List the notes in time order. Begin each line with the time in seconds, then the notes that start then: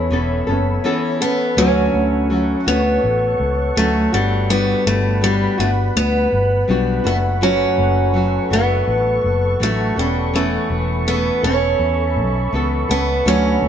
Already playing: E2 B3 C#4 A4 C#5 E5 B5
0.11 E1 E3 B3 C#4 A4
0.47 F#1 B3 C#4 A4
0.84 E3 B3 C#4 A4
1.21 B3 C#4 A4
1.56 D2 D3 F#3 A3 C#4 F#4 A4 C#5 F#5 C#6
1.94 D2
2.30 F#3 A3 C#4 F#4
2.66 D2 A3 B3 C#4 F#4
3.04 A1
3.40 C#2
3.76 D2 F#3 A3 C#4 F#4
4.12 G1 G3 B3 D4 F#4 B4 B5
4.50 G3 B3 D4 F#4
4.87 G1 A3
5.21 G3 B3 D4 F#4
5.58 G1 A3 B3 D4 F#4
5.96 D2 B3
6.33 G1
6.68 B1 G3 B3 D4 F#4
7.04 F#1 F#3 A3 B3 D4 F#4 A4 C#6
7.41 F#2 F#3 A3 C#4 F#4
7.78 F#1
8.14 F#3 A3 F#4
8.50 F#1 F#3 A3 B3 D4 F#4
8.88 A1
9.24 F#1
9.60 A1 F#3 A3 D4 F#4
9.96 E1 G3 B3 C#4 A4 E5 B5
10.34 E3 A3 B3 C#4 A4
10.70 E1
11.07 E3 B3 C#4 A4
11.43 E1 B3 C#4 A4
11.80 E2
12.16 B1
12.53 C#2 E3 B3 C#4 A4
12.89 C#2 B3 C#4 A4
13.25 D2 D3 F#3 A3 C#4 F#4 F#5 D6
13.62 D2